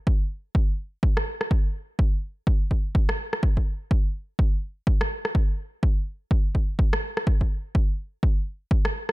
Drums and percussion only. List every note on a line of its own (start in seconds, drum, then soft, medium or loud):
0.07 kick loud
0.55 kick loud
1.03 kick loud
1.17 cross-stick medium
1.41 cross-stick medium
1.51 kick loud
1.99 kick loud
2.47 kick loud
2.71 kick medium
2.95 kick loud
3.09 cross-stick medium
3.33 cross-stick medium
3.43 kick loud
3.57 kick medium
3.91 kick loud
4.39 kick loud
4.87 kick loud
5.01 cross-stick medium
5.25 cross-stick medium
5.35 kick loud
5.83 kick loud
6.31 kick loud
6.55 kick medium
6.79 kick loud
6.93 cross-stick medium
7.17 cross-stick medium
7.27 kick loud
7.41 kick medium
7.75 kick loud
8.23 kick loud
8.71 kick loud
8.85 cross-stick medium
9.09 cross-stick medium